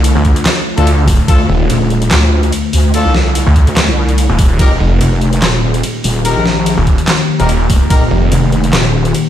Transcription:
0.00 0.14 C2 loud
0.00 4.55 D3 medium
0.00 4.55 A3 medium
0.00 4.55 F4 medium
0.04 closed hi-hat medium
0.04 ride soft
0.15 0.34 D2 loud
0.25 kick medium
0.25 closed hi-hat medium
0.36 closed hi-hat medium
0.46 snare loud
0.46 clap loud
0.46 closed hi-hat medium
0.46 ride medium
0.78 1.17 D2 loud
0.78 0.88 D4 loud
0.78 0.88 F4 medium
0.78 0.88 A4 loud
0.78 closed hi-hat medium
0.87 closed hi-hat medium
0.87 ride soft
1.08 kick loud
1.08 open hi-hat medium
1.28 1.47 D2 loud
1.28 1.41 D4 medium
1.28 1.41 F4 medium
1.28 1.41 A4 loud
1.28 kick loud
1.28 closed hi-hat medium
1.28 ride medium
1.49 1.68 D#1 medium
1.70 2.10 D#1 loud
1.70 closed hi-hat medium
1.70 ride soft
1.90 closed hi-hat medium
2.02 closed hi-hat medium
2.11 2.51 D2 loud
2.11 snare loud
2.11 clap medium
2.11 closed hi-hat medium
2.11 ride medium
2.43 closed hi-hat medium
2.52 closed hi-hat medium
2.52 ride soft
2.73 3.03 D2 loud
2.73 open hi-hat medium
2.94 3.13 D4 medium
2.94 3.13 F4 medium
2.94 3.13 A4 loud
2.94 closed hi-hat medium
2.94 ride medium
3.05 3.45 C2 loud
3.15 snare medium
3.35 closed hi-hat medium
3.35 ride soft
3.47 3.65 D2 loud
3.56 kick medium
3.56 closed hi-hat medium
3.67 3.86 D2 loud
3.67 closed hi-hat medium
3.77 snare loud
3.77 clap medium
3.77 closed hi-hat medium
3.77 ride medium
3.88 4.27 C2 loud
4.09 closed hi-hat medium
4.18 closed hi-hat medium
4.18 ride soft
4.29 4.58 D#1 loud
4.39 kick loud
4.39 open hi-hat medium
4.59 4.79 D#1 loud
4.59 9.29 D#3 medium
4.59 9.29 A#3 medium
4.59 4.72 D#4 loud
4.59 9.29 G4 medium
4.59 4.72 G4 medium
4.59 4.72 A#4 loud
4.59 kick loud
4.59 closed hi-hat medium
4.59 ride medium
4.80 4.99 F1 loud
5.01 5.41 F1 loud
5.01 closed hi-hat medium
5.01 ride soft
5.21 closed hi-hat medium
5.33 closed hi-hat medium
5.42 5.82 D#1 loud
5.42 snare loud
5.42 clap medium
5.42 closed hi-hat medium
5.42 ride medium
5.74 closed hi-hat soft
5.83 closed hi-hat medium
5.83 ride soft
6.04 6.34 D#1 loud
6.04 open hi-hat medium
6.25 6.44 D#4 medium
6.25 6.44 G4 medium
6.25 6.44 A#4 loud
6.25 closed hi-hat medium
6.25 ride medium
6.36 6.76 A#1 loud
6.46 snare medium
6.66 closed hi-hat medium
6.66 ride medium
6.78 6.96 D#1 loud
6.87 kick medium
6.87 closed hi-hat medium
6.98 closed hi-hat medium
7.08 snare loud
7.08 clap medium
7.08 closed hi-hat medium
7.08 ride medium
7.40 7.79 D#1 loud
7.40 7.50 D#4 loud
7.40 7.50 G4 medium
7.40 7.50 A#4 loud
7.40 closed hi-hat medium
7.49 closed hi-hat medium
7.49 ride soft
7.70 kick loud
7.70 open hi-hat loud
7.90 8.10 D#1 loud
7.90 8.03 D#4 loud
7.90 8.03 G4 medium
7.90 8.03 A#4 loud
7.90 kick loud
7.90 closed hi-hat medium
7.90 ride medium
8.11 8.30 F1 loud
8.32 8.72 F1 loud
8.32 closed hi-hat medium
8.32 ride soft
8.52 closed hi-hat medium
8.64 closed hi-hat medium
8.73 9.13 D#1 loud
8.73 snare loud
8.73 clap medium
8.73 closed hi-hat medium
8.73 ride medium
9.05 closed hi-hat medium
9.14 closed hi-hat medium
9.14 ride soft

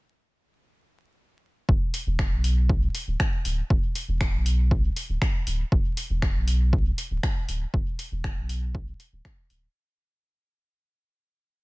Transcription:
1.69 1.77 E1 medium
1.69 kick loud
1.94 open hi-hat medium
2.07 2.33 E1 medium
2.19 finger snap medium
2.19 kick loud
2.32 2.88 B1 medium
2.44 open hi-hat medium
2.69 kick loud
2.95 open hi-hat medium
3.08 3.16 D1 medium
3.20 finger snap medium
3.20 kick loud
3.45 3.62 D1 loud
3.45 open hi-hat medium
3.70 3.79 E1 loud
3.70 kick loud
3.95 open hi-hat medium
4.08 4.35 E1 medium
4.21 finger snap medium
4.21 kick loud
4.34 4.90 B1 medium
4.46 open hi-hat medium
4.71 kick loud
4.96 open hi-hat medium
5.09 5.17 D1 medium
5.22 finger snap medium
5.22 kick loud
5.47 5.63 D1 medium
5.47 open hi-hat medium
5.72 5.80 E1 loud
5.72 kick loud
5.97 open hi-hat medium
6.10 6.37 E1 medium
6.22 finger snap medium
6.22 kick loud
6.35 6.91 B1 loud
6.48 open hi-hat medium
6.73 kick loud
6.98 open hi-hat medium
7.11 7.19 D1 medium
7.23 finger snap medium
7.23 kick loud
7.49 7.65 D1 loud
7.49 open hi-hat medium
7.74 7.82 E1 medium
7.74 kick loud
7.99 open hi-hat medium
8.12 8.39 E1 medium
8.24 finger snap medium
8.24 kick loud
8.37 8.93 B1 medium
8.49 open hi-hat medium
8.75 kick loud
9.00 open hi-hat medium
9.13 9.21 D1 medium
9.25 finger snap medium
9.25 kick loud
9.50 9.67 D1 loud
9.50 open hi-hat medium

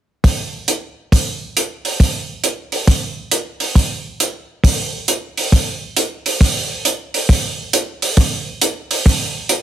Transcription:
0.24 kick soft
0.24 open hi-hat soft
0.68 closed hi-hat soft
1.12 kick soft
1.12 open hi-hat soft
1.57 closed hi-hat soft
1.85 open hi-hat soft
2.00 kick soft
2.00 open hi-hat soft
2.44 closed hi-hat soft
2.72 open hi-hat soft
2.87 kick soft
2.87 open hi-hat soft
3.31 closed hi-hat soft
3.60 open hi-hat soft
3.75 kick soft
3.75 open hi-hat soft
4.20 closed hi-hat soft
4.64 kick soft
4.64 open hi-hat soft
5.08 closed hi-hat soft
5.38 open hi-hat soft
5.52 kick soft
5.52 open hi-hat soft
5.97 closed hi-hat soft
6.26 open hi-hat soft
6.41 kick soft
6.41 open hi-hat soft
6.85 closed hi-hat soft
7.14 open hi-hat soft
7.29 kick soft
7.29 open hi-hat soft
7.73 closed hi-hat soft
8.02 open hi-hat soft
8.17 kick soft
8.17 open hi-hat soft
8.62 closed hi-hat soft
8.91 open hi-hat soft
9.06 kick soft
9.06 open hi-hat soft
9.49 closed hi-hat soft

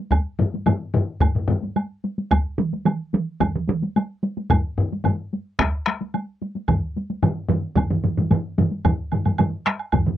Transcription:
0.11 taiko medium
0.11 taiko high medium
0.11 high woodblock medium
0.39 taiko low-mid loud
0.39 taiko high medium
0.54 taiko high medium
0.66 taiko low-mid loud
0.66 taiko high medium
0.66 high woodblock medium
0.94 taiko low-mid loud
0.94 taiko high soft
1.21 taiko loud
1.21 taiko low-mid medium
1.21 taiko high medium
1.21 high woodblock medium
1.35 taiko low-mid medium
1.48 taiko low-mid loud
1.48 taiko high medium
1.62 taiko high soft
1.76 taiko high medium
1.76 high woodblock soft
2.04 taiko high soft
2.18 taiko high soft
2.31 taiko loud
2.31 taiko high medium
2.31 high woodblock medium
2.58 taiko mid loud
2.58 taiko high medium
2.73 taiko high soft
2.86 taiko mid loud
2.86 taiko high medium
2.86 high woodblock soft
3.13 taiko mid loud
3.13 taiko high soft
3.40 taiko loud
3.40 taiko mid medium
3.40 taiko high medium
3.40 high woodblock medium
3.56 taiko mid medium
3.69 taiko mid loud
3.69 taiko high medium
3.82 taiko high soft
3.96 taiko high medium
3.96 high woodblock soft
4.23 taiko high medium
4.37 taiko high medium
4.50 taiko loud
4.50 taiko low-mid medium
4.50 taiko high medium
4.50 high woodblock medium
4.78 taiko low-mid medium
4.92 taiko high soft
5.04 taiko low-mid medium
5.04 taiko high medium
5.04 high woodblock soft
5.33 taiko high soft
5.59 taiko rim medium
5.59 taiko loud
5.59 taiko high medium
5.59 high woodblock medium
5.86 taiko rim medium
5.86 taiko high medium
6.01 taiko high soft
6.14 taiko high medium
6.14 high woodblock soft
6.42 taiko high soft
6.55 taiko high soft
6.68 taiko loud
6.68 taiko low-mid medium
6.68 taiko mid medium
6.68 taiko high medium
6.68 high woodblock soft
6.96 taiko high soft
7.10 taiko high soft
7.23 taiko low-mid loud
7.23 taiko mid medium
7.23 taiko high medium
7.23 high woodblock soft
7.50 taiko low-mid loud
7.50 taiko mid loud
7.50 taiko high soft
7.76 taiko loud
7.76 taiko low-mid medium
7.76 taiko mid medium
7.76 taiko high medium
7.76 high woodblock soft
7.90 taiko low-mid medium
7.90 taiko mid medium
8.04 taiko low-mid medium
8.04 taiko mid medium
8.04 taiko high soft
8.18 taiko low-mid medium
8.18 taiko mid medium
8.18 taiko high soft
8.31 taiko low-mid medium
8.31 taiko mid loud
8.31 taiko high medium
8.31 high woodblock soft
8.58 taiko low-mid loud
8.58 taiko mid medium
8.58 taiko high medium
8.71 taiko high soft
8.85 taiko loud
8.85 taiko low-mid medium
8.85 taiko mid loud
8.85 taiko high medium
8.85 high woodblock medium
9.12 taiko low-mid medium
9.12 taiko mid medium
9.12 taiko high medium
9.12 high woodblock soft
9.25 taiko low-mid medium
9.25 taiko mid medium
9.25 taiko high medium
9.25 high woodblock soft
9.38 taiko low-mid medium
9.38 taiko mid medium
9.38 taiko high medium
9.38 high woodblock medium
9.66 taiko rim medium
9.66 taiko high soft
9.66 high woodblock soft
9.79 high woodblock soft
9.92 taiko medium
9.92 taiko low-mid medium
9.92 taiko mid medium
9.92 taiko high medium
9.92 high woodblock medium
10.06 taiko low-mid medium
10.06 taiko mid medium

